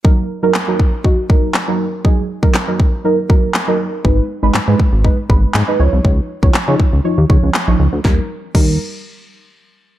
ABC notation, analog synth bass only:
X:1
M:4/4
L:1/16
Q:1/4=120
K:Ebm
V:1 name="Analog synth bass" clef=bass
z16 | z16 | A,,,2 z A,,, A,, A,, z A,,,2 z A,,,2 A,, z D,, =C,, | D,,2 z D,, D, D, z D,, z E,, D,, D,, z B,,, D,, =D,, |
E,, z3 E,,2 z8 z2 |]